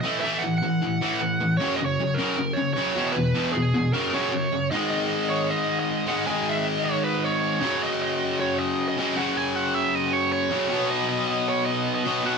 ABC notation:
X:1
M:4/4
L:1/16
Q:1/4=155
K:G#m
V:1 name="Lead electric guitar"
d2 e2 f2 f8- f2 | c2 d c3 A4 c2 c4 | B4 G4 A2 c6 | d2 d4 c2 d3 d3 f2 |
g2 e2 d2 c2 B2 c6 | d2 d4 c2 d3 d3 f2 | g2 f2 e2 d2 c2 c6 | d2 d4 c2 d3 d3 f2 |]
V:2 name="Distorted electric guitar" clef=bass
[=A,,E,=A,]2 [A,,E,A,]2 [A,,E,]2 [A,,E,]2 [A,,E,]2 [A,,E,A,]2 [A,,E,]2 [A,,E,]2 | [F,,C,F,]2 [F,,C,]2 [F,,C,]2 [F,,C,F,]2 [F,,C,]2 [F,,C,]2 [F,,C,F,]2 [E,,B,,E,]2 | [E,,B,,]2 [E,,B,,E,]2 [E,,B,,]2 [E,,B,,]2 [F,,C,F,]2 [F,,C,F,]2 [F,,C,]2 [F,,C,]2 | [G,,D,G,]12- [G,,D,G,]2 [G,,D,G,]2 |
[G,,D,G,]12- [G,,D,G,]2 [F,,C,F,]2- | [F,,C,F,]12 [F,,C,F,]2 [F,,C,F,]2- | [F,,C,F,]12 [F,,C,F,]2 [B,,F,B,]2- | [B,,F,B,]12 [B,,F,B,]2 [B,,F,B,]2 |]